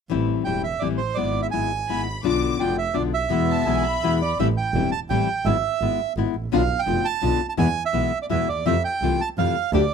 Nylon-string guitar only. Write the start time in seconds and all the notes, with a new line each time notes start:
0.10 E3 G3 C4 E4
0.45 E3 G3 C4 E4
0.82 E3 G3 C4 E4
1.17 G#3 B3 E4
1.53 G#3 B3 E4
1.89 G#3 B3 E4
2.23 B2 D3 B3 D4 F4
2.59 B2 D3 B3 D4 F4
2.94 B2 D3 B3 D4 F4
3.29 B2 E3 G#3 B3 E4
3.66 B2 E3 G#3 B3 E4
4.03 B2 E3 G#3 B3 E4
4.39 E3 G3 C4 E4
4.75 E3 G3 C4 E4
5.10 E3 G3 C4 E4
5.46 G#3 B3 E4
5.82 G#3 B3 E4
6.17 G#3 B3 E4
6.52 B2 D3 B3 D4 F4
6.86 B2 D3 B3 D4 F4
7.21 B2 D3 B3 D4 F4
7.57 B2 E3 G#3 B3 E4
7.93 B2 E3 G#3 B3 E4
8.30 B2 E3 G#3 B3 E4
8.66 C3 E3 A3 C4 F4
9.02 C3 E3 A3 C4 F4
9.38 C3 E3 A3 C4 F4
9.73 D3 A3 D4 G4